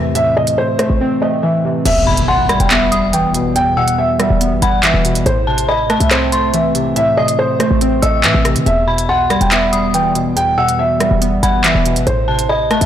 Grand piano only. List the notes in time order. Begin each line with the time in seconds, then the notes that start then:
Already playing: E5
0.15 E5
0.37 D#5
0.58 C5
0.79 C5
1.22 D#5
1.43 E5
1.86 E5
2.28 F#5
2.60 G5
2.71 E5
3.13 G5
3.56 G5
3.77 F#5
3.98 E5
4.20 E5
4.62 F#5
4.83 E5
5.26 C5
5.69 D#5
6.01 E5
6.11 C5
6.54 E5
6.96 E5
7.17 D#5
7.39 C5
7.60 C5
8.03 D#5
8.24 E5
8.66 E5
9.09 F#5
9.41 G5
9.51 E5
9.94 G5
10.37 G5
10.58 F#5
10.79 E5
11.00 E5
11.43 F#5
11.64 E5
12.07 C5
12.49 D#5
12.81 E5